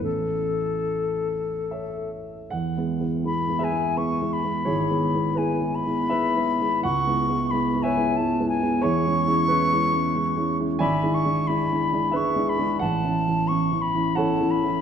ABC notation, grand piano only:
X:1
M:3/4
L:1/8
Q:1/4=88
K:A
V:1 name="Grand piano"
z4 [Ace]2 | [K:E] f3 [GBe]3 | [EGc]2 [EGB]2 [GBe]2 | f3 [Bce]3 |
[EGc]2 B2 z2 | [K:A] [deg]4 [GBe]2 | f4 [Acf]2 |]
V:2 name="Grand piano"
[A,,,A,CE]6 | [K:E] (3E,, [G,B,E] [G,B,E] (3[G,B,E] [G,B,E] [G,B,E] (3[G,B,E] [G,B,E] [G,B,E] | (3G,,, [G,B,E] [G,B,E] (3[G,B,] [G,B,E] [G,B,E] (3[G,B,E] [G,B,E] [G,B,E] | (3C,, [G,B,E] [G,B,E] (3[G,B,E] [G,B,E] [G,B,E] (3[G,B,E] [G,B,E] [G,B,E] |
(3E,, [G,CE] [G,CE] (3[G,CE] [G,CE] [G,CE] (3[G,CE] [G,CE] [G,CE] | [K:A] (3G,,, [G,DE] [G,DE] (3[G,DE] [G,DE] [G,DE] (3[G,DE] [G,DE] [G,DE] | (3A,,, [E,CE] [E,CE] (3[E,CE] [E,CE] [E,CE] (3[E,CE] [E,CE] [E,CE] |]